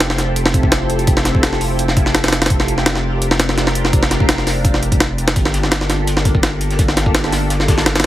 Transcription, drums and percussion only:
0.00 snare, closed hi-hat
0.10 snare
0.18 snare, closed hi-hat
0.36 closed hi-hat
0.46 snare
0.54 kick, closed hi-hat
0.63 kick
0.72 snare, closed hi-hat
0.90 closed hi-hat
0.99 closed hi-hat
1.07 kick, closed hi-hat
1.17 snare
1.25 snare, closed hi-hat
1.35 kick
1.43 snare, closed hi-hat
1.53 snare
1.61 open hi-hat
1.79 closed hi-hat
1.88 snare
1.97 kick, closed hi-hat
2.06 snare
2.15 snare, closed hi-hat
2.24 snare, closed hi-hat
2.28 snare, closed hi-hat
2.33 snare, closed hi-hat
2.42 snare, closed hi-hat
2.46 snare, closed hi-hat
2.50 kick, closed hi-hat
2.60 snare
2.68 closed hi-hat
2.78 snare
2.86 snare, closed hi-hat
2.95 snare
3.22 closed hi-hat
3.31 snare
3.40 snare, closed hi-hat
3.49 snare
3.58 snare, closed hi-hat
3.67 snare
3.75 closed hi-hat
3.85 snare
3.93 kick, closed hi-hat
4.03 snare
4.11 snare, closed hi-hat
4.20 kick
4.29 snare, closed hi-hat
4.38 snare
4.47 snare, open hi-hat
4.65 kick, closed hi-hat
4.74 snare
4.83 closed hi-hat
4.92 kick, closed hi-hat
5.00 snare, closed hi-hat
5.18 closed hi-hat
5.28 snare, closed hi-hat
5.36 kick, closed hi-hat
5.45 snare
5.53 snare, closed hi-hat
5.63 snare
5.71 snare, closed hi-hat
5.81 snare
5.90 snare, closed hi-hat
6.07 closed hi-hat
6.17 snare
6.25 kick, closed hi-hat
6.35 kick
6.43 snare, closed hi-hat
6.61 closed hi-hat
6.71 snare, closed hi-hat
6.79 kick, closed hi-hat
6.88 snare, closed hi-hat
6.97 snare, closed hi-hat
7.06 kick
7.15 snare, closed hi-hat
7.24 snare
7.32 snare, closed hi-hat, open hi-hat
7.50 snare, closed hi-hat
7.60 snare
7.68 kick, snare, closed hi-hat
7.78 snare, closed hi-hat
7.86 snare, closed hi-hat
7.95 snare, closed hi-hat
8.00 snare, closed hi-hat

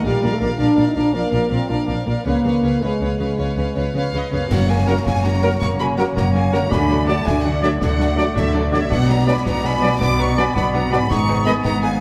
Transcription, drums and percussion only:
4.51 concert bass drum, snare, crash
5.06 concert bass drum, snare
5.61 concert bass drum, snare
5.98 snare
6.17 concert bass drum, snare
6.54 snare
6.72 concert bass drum, snare
7.08 snare
7.27 concert bass drum, snare
7.63 snare
7.81 concert bass drum, snare
8.00 snare
8.18 snare
8.36 concert bass drum, snare
8.74 snare
8.92 concert bass drum, snare
9.46 concert bass drum, snare
10.01 concert bass drum, snare
10.38 snare
10.56 concert bass drum, snare
10.93 snare
11.11 concert bass drum, snare
11.47 snare
11.65 concert bass drum, snare

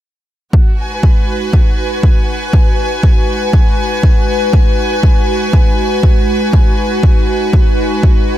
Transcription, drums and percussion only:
0.53 kick
1.03 kick
1.53 kick
2.03 kick
2.53 kick
3.03 kick
3.53 kick
4.03 kick
4.53 kick
5.03 kick
5.53 kick
6.03 kick
6.53 kick
7.03 kick
7.53 kick
8.03 kick

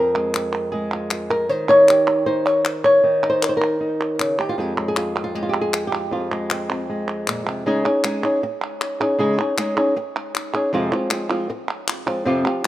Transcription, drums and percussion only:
0.34 clap
0.53 clap
1.11 clap
1.88 clap
2.65 clap
2.84 clap
3.43 clap
4.19 clap
4.39 clap
4.96 clap
5.16 clap
5.74 clap
5.93 clap
6.32 clap
6.50 clap
6.70 clap
7.08 clap
7.27 clap
7.47 clap
8.04 clap
8.23 clap
8.62 clap
8.81 clap
9.01 clap
9.58 clap
10.16 clap
10.35 clap
10.54 clap
10.92 clap
11.11 clap
11.30 clap
11.69 clap
11.88 clap
12.07 clap
12.45 clap

